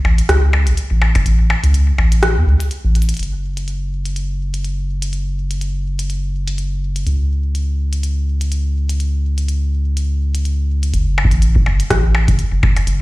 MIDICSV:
0, 0, Header, 1, 4, 480
1, 0, Start_track
1, 0, Key_signature, 3, "minor"
1, 0, Tempo, 483871
1, 1249, Time_signature, 4, 2, 24, 8
1, 12912, End_track
2, 0, Start_track
2, 0, Title_t, "Analog synth bass"
2, 0, Program_c, 0, 38
2, 48, Note_on_c, 0, 33, 106
2, 207, Note_off_c, 0, 33, 0
2, 287, Note_on_c, 0, 37, 106
2, 662, Note_on_c, 0, 33, 97
2, 677, Note_off_c, 0, 37, 0
2, 728, Note_off_c, 0, 33, 0
2, 903, Note_on_c, 0, 33, 93
2, 1183, Note_off_c, 0, 33, 0
2, 1249, Note_on_c, 0, 33, 106
2, 1540, Note_off_c, 0, 33, 0
2, 1624, Note_on_c, 0, 37, 100
2, 1904, Note_off_c, 0, 37, 0
2, 1969, Note_on_c, 0, 33, 101
2, 2344, Note_on_c, 0, 40, 88
2, 2359, Note_off_c, 0, 33, 0
2, 2408, Note_off_c, 0, 40, 0
2, 2449, Note_on_c, 0, 37, 83
2, 2531, Note_off_c, 0, 37, 0
2, 2823, Note_on_c, 0, 33, 95
2, 3104, Note_off_c, 0, 33, 0
2, 3169, Note_on_c, 0, 30, 87
2, 6988, Note_off_c, 0, 30, 0
2, 7009, Note_on_c, 0, 37, 91
2, 10828, Note_off_c, 0, 37, 0
2, 10849, Note_on_c, 0, 30, 102
2, 11140, Note_off_c, 0, 30, 0
2, 11223, Note_on_c, 0, 33, 96
2, 11504, Note_off_c, 0, 33, 0
2, 11569, Note_on_c, 0, 30, 96
2, 11727, Note_off_c, 0, 30, 0
2, 11809, Note_on_c, 0, 33, 105
2, 12183, Note_on_c, 0, 30, 99
2, 12198, Note_off_c, 0, 33, 0
2, 12248, Note_off_c, 0, 30, 0
2, 12423, Note_on_c, 0, 30, 92
2, 12703, Note_off_c, 0, 30, 0
2, 12768, Note_on_c, 0, 30, 100
2, 12912, Note_off_c, 0, 30, 0
2, 12912, End_track
3, 0, Start_track
3, 0, Title_t, "Percussion blips"
3, 48, Note_on_c, 9, 76, 64
3, 148, Note_off_c, 9, 76, 0
3, 528, Note_on_c, 9, 76, 84
3, 627, Note_off_c, 9, 76, 0
3, 1008, Note_on_c, 9, 76, 83
3, 1107, Note_off_c, 9, 76, 0
3, 1143, Note_on_c, 9, 76, 57
3, 1242, Note_off_c, 9, 76, 0
3, 1489, Note_on_c, 9, 76, 84
3, 1588, Note_off_c, 9, 76, 0
3, 1968, Note_on_c, 9, 76, 64
3, 2068, Note_off_c, 9, 76, 0
3, 11089, Note_on_c, 9, 76, 80
3, 11188, Note_off_c, 9, 76, 0
3, 11569, Note_on_c, 9, 76, 65
3, 11668, Note_off_c, 9, 76, 0
3, 12049, Note_on_c, 9, 76, 83
3, 12149, Note_off_c, 9, 76, 0
3, 12528, Note_on_c, 9, 76, 81
3, 12628, Note_off_c, 9, 76, 0
3, 12663, Note_on_c, 9, 76, 55
3, 12762, Note_off_c, 9, 76, 0
3, 12912, End_track
4, 0, Start_track
4, 0, Title_t, "Drums"
4, 183, Note_on_c, 9, 42, 67
4, 282, Note_off_c, 9, 42, 0
4, 288, Note_on_c, 9, 37, 113
4, 288, Note_on_c, 9, 42, 51
4, 387, Note_off_c, 9, 37, 0
4, 387, Note_off_c, 9, 42, 0
4, 662, Note_on_c, 9, 42, 67
4, 761, Note_off_c, 9, 42, 0
4, 768, Note_on_c, 9, 42, 56
4, 867, Note_off_c, 9, 42, 0
4, 1143, Note_on_c, 9, 36, 77
4, 1143, Note_on_c, 9, 42, 67
4, 1242, Note_off_c, 9, 36, 0
4, 1242, Note_off_c, 9, 42, 0
4, 1249, Note_on_c, 9, 42, 53
4, 1348, Note_off_c, 9, 42, 0
4, 1623, Note_on_c, 9, 42, 70
4, 1722, Note_off_c, 9, 42, 0
4, 1728, Note_on_c, 9, 42, 55
4, 1828, Note_off_c, 9, 42, 0
4, 2103, Note_on_c, 9, 42, 72
4, 2202, Note_off_c, 9, 42, 0
4, 2208, Note_on_c, 9, 37, 119
4, 2208, Note_on_c, 9, 42, 57
4, 2308, Note_off_c, 9, 37, 0
4, 2308, Note_off_c, 9, 42, 0
4, 2583, Note_on_c, 9, 42, 70
4, 2682, Note_off_c, 9, 42, 0
4, 2688, Note_on_c, 9, 42, 55
4, 2788, Note_off_c, 9, 42, 0
4, 2929, Note_on_c, 9, 42, 56
4, 2996, Note_off_c, 9, 42, 0
4, 2996, Note_on_c, 9, 42, 63
4, 3063, Note_off_c, 9, 42, 0
4, 3063, Note_on_c, 9, 42, 75
4, 3116, Note_off_c, 9, 42, 0
4, 3116, Note_on_c, 9, 42, 39
4, 3142, Note_off_c, 9, 42, 0
4, 3142, Note_on_c, 9, 42, 48
4, 3169, Note_off_c, 9, 42, 0
4, 3169, Note_on_c, 9, 42, 52
4, 3202, Note_off_c, 9, 42, 0
4, 3202, Note_on_c, 9, 42, 62
4, 3302, Note_off_c, 9, 42, 0
4, 3543, Note_on_c, 9, 42, 65
4, 3642, Note_off_c, 9, 42, 0
4, 3648, Note_on_c, 9, 42, 52
4, 3748, Note_off_c, 9, 42, 0
4, 4023, Note_on_c, 9, 42, 64
4, 4122, Note_off_c, 9, 42, 0
4, 4129, Note_on_c, 9, 42, 51
4, 4228, Note_off_c, 9, 42, 0
4, 4503, Note_on_c, 9, 42, 65
4, 4602, Note_off_c, 9, 42, 0
4, 4608, Note_on_c, 9, 42, 53
4, 4707, Note_off_c, 9, 42, 0
4, 4982, Note_on_c, 9, 42, 67
4, 5082, Note_off_c, 9, 42, 0
4, 5088, Note_on_c, 9, 42, 52
4, 5187, Note_off_c, 9, 42, 0
4, 5463, Note_on_c, 9, 42, 67
4, 5562, Note_off_c, 9, 42, 0
4, 5569, Note_on_c, 9, 42, 53
4, 5668, Note_off_c, 9, 42, 0
4, 5943, Note_on_c, 9, 42, 65
4, 6042, Note_off_c, 9, 42, 0
4, 6049, Note_on_c, 9, 42, 54
4, 6148, Note_off_c, 9, 42, 0
4, 6424, Note_on_c, 9, 42, 68
4, 6523, Note_off_c, 9, 42, 0
4, 6529, Note_on_c, 9, 42, 56
4, 6628, Note_off_c, 9, 42, 0
4, 6904, Note_on_c, 9, 42, 63
4, 7003, Note_off_c, 9, 42, 0
4, 7010, Note_on_c, 9, 42, 49
4, 7109, Note_off_c, 9, 42, 0
4, 7489, Note_on_c, 9, 42, 53
4, 7589, Note_off_c, 9, 42, 0
4, 7863, Note_on_c, 9, 42, 69
4, 7963, Note_off_c, 9, 42, 0
4, 7970, Note_on_c, 9, 42, 51
4, 8069, Note_off_c, 9, 42, 0
4, 8344, Note_on_c, 9, 42, 65
4, 8443, Note_off_c, 9, 42, 0
4, 8449, Note_on_c, 9, 42, 54
4, 8548, Note_off_c, 9, 42, 0
4, 8823, Note_on_c, 9, 42, 65
4, 8923, Note_off_c, 9, 42, 0
4, 8929, Note_on_c, 9, 42, 50
4, 9028, Note_off_c, 9, 42, 0
4, 9303, Note_on_c, 9, 42, 62
4, 9403, Note_off_c, 9, 42, 0
4, 9409, Note_on_c, 9, 42, 49
4, 9508, Note_off_c, 9, 42, 0
4, 9889, Note_on_c, 9, 42, 62
4, 9988, Note_off_c, 9, 42, 0
4, 10263, Note_on_c, 9, 42, 62
4, 10363, Note_off_c, 9, 42, 0
4, 10369, Note_on_c, 9, 42, 51
4, 10469, Note_off_c, 9, 42, 0
4, 10743, Note_on_c, 9, 42, 63
4, 10843, Note_off_c, 9, 42, 0
4, 10849, Note_on_c, 9, 42, 54
4, 10948, Note_off_c, 9, 42, 0
4, 11156, Note_on_c, 9, 36, 127
4, 11224, Note_on_c, 9, 42, 72
4, 11255, Note_off_c, 9, 36, 0
4, 11323, Note_off_c, 9, 42, 0
4, 11329, Note_on_c, 9, 42, 59
4, 11428, Note_off_c, 9, 42, 0
4, 11463, Note_on_c, 9, 36, 105
4, 11562, Note_off_c, 9, 36, 0
4, 11704, Note_on_c, 9, 42, 69
4, 11803, Note_off_c, 9, 42, 0
4, 11809, Note_on_c, 9, 36, 120
4, 11809, Note_on_c, 9, 37, 117
4, 11809, Note_on_c, 9, 42, 56
4, 11908, Note_off_c, 9, 36, 0
4, 11909, Note_off_c, 9, 37, 0
4, 11909, Note_off_c, 9, 42, 0
4, 12183, Note_on_c, 9, 36, 103
4, 12184, Note_on_c, 9, 42, 73
4, 12282, Note_off_c, 9, 36, 0
4, 12283, Note_off_c, 9, 42, 0
4, 12289, Note_on_c, 9, 42, 57
4, 12388, Note_off_c, 9, 42, 0
4, 12529, Note_on_c, 9, 36, 123
4, 12628, Note_off_c, 9, 36, 0
4, 12663, Note_on_c, 9, 42, 70
4, 12762, Note_off_c, 9, 42, 0
4, 12769, Note_on_c, 9, 42, 57
4, 12868, Note_off_c, 9, 42, 0
4, 12912, End_track
0, 0, End_of_file